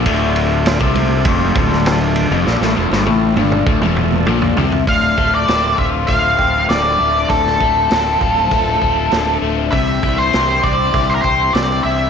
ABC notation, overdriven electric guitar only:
X:1
M:4/4
L:1/16
Q:1/4=99
K:Dm
V:1 name="Overdriven electric guitar" clef=bass
D,,4- D,, C,3 F,,2 D,,4- D,, F,, | B,, A,, E,, G,, A,,2 G,,2 D,, E,,3 B,,2 C,2 | D,,2 A,2 C2 F2 A,2 C2 D,2 A,2 | D,,2 A,2 C2 F2 A,2 C2 D,2 A,2 |
C,2 E2 G2 c2 E2 G2 C2 E2 |]